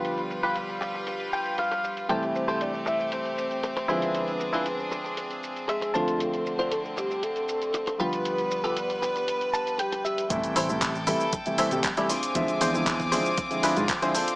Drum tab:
HH |xx--x---xx-xxx-x|xx--x---xx-xxx-x|xx--x---xx-xxx-x|xx--x---xx-xxx-x|
SH |xxxxxxxxxxxxxxxx|xxxxxxxxxxxxxxxx|xxxxxxxxxxxxxxxx|xxxxxxxxxxxxxxxx|
CP |----------------|----------------|----------------|----------------|
BD |----------------|----------------|----------------|----------------|

HH |xx-xxx-xxx-xxx-x|xxo-x-o-xxoxxxox|xxo-x-o-xxoxxxox|
SH |xxxxxxxxxxxxxxxx|xxxxxxxxxxxxxxxx|xxxxxxxxxxxxxxxx|
CP |----------------|----x-------x---|----x-------x---|
BD |----------------|o---o---o---o---|o---oo--o---o---|